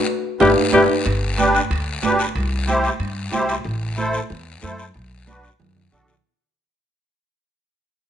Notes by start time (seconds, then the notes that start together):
0.40 G1 E4 G4 B4 D5, high conga, high timbale, long guiro
0.73 G1 E4 G4 B4 D5, high conga, high timbale, long guiro
1.06 G1, high conga, high timbale, long guiro
1.38 D4 G4 B4, high conga, high timbale, short guiro
1.55 high timbale, short guiro
1.70 D2, high conga, high timbale, long guiro
2.03 G1 D4 G4 B4, high conga, high timbale, low timbale, short guiro
2.19 high timbale, short guiro
2.35 C2, high conga, high timbale, long guiro
2.67 E4 G4 C5, high conga, high timbale, short guiro
2.84 high timbale, short guiro
3.00 G2, high conga, high timbale, long guiro
3.32 C2 E4 G4 C5, high conga, high timbale, low timbale, short guiro
3.49 high timbale, short guiro
3.65 A1, high conga, long guiro
3.97 E4 A4 C5, high conga, short guiro
4.13 short guiro
4.30 E2, high conga, long guiro
4.62 F#2 E4 A4 C5, high conga, short guiro
4.78 short guiro
4.94 B1, high conga, long guiro
5.27 D4 F#4 B4, high conga, short guiro
5.44 short guiro
5.60 F#2, low conga, long guiro
5.76 low conga
5.91 B1 D4 F#4 A4, low conga, short guiro
6.08 low conga, short guiro